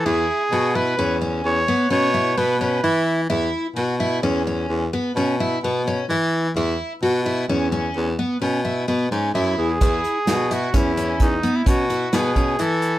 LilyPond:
<<
  \new Staff \with { instrumentName = "Trumpet" } { \time 7/4 \key e \major \tempo 4 = 129 gis'4. b'4 r8 cis''4 cis''4 b'8 b'4 r8 | r1. r4 | r1. r8 gis'8~ | gis'4. fis'8 e'4 dis'8. e'16 fis'4 gis'4 a'4 | }
  \new Staff \with { instrumentName = "Twelve-string acoustic guitar" } { \time 7/4 \key e \major e'4 fis'8 e'8 cis'8 cis'4 b8 cis'8 e'8 b8 cis'8 e'4 | e'4 fis'8 e'8 cis'8 cis'4 b8 cis'8 e'8 b8 cis'8 e'4 | e'4 fis'8 e'8 cis'8 cis'4 b8 cis'8 e'8 b8 cis'8 e'4 | e'4 fis'8 e'8 cis'8 cis'4 b8 cis'8 e'8 b8 cis'8 e'4 | }
  \new Staff \with { instrumentName = "Baritone saxophone" } { \clef bass \time 7/4 \key e \major e,8 r8 b,4 e,4 e,8 r8 b,4 b,4 e4 | e,8 r8 b,4 e,4 e,8 r8 b,4 b,4 e4 | e,8 r8 b,4 e,4 e,8 r8 b,4 b,8 gis,8 fis,8 e,8 | e,8 r8 b,4 e,4 e,8 r8 b,4 b,4 e4 | }
  \new DrumStaff \with { instrumentName = "Drums" } \drummode { \time 7/4 r4 r4 r4 r4 r4 r4 r4 | r4 r4 r4 r4 r4 r4 r4 | r4 r4 r4 r4 r4 r4 r4 | <hh bd>8 hh8 <hh sn>8 hh8 <hh bd>8 hh8 <hh bd>8 hh8 <hh bd>8 hh8 <hh sn>8 <hh bd>8 hh8 hh8 | }
>>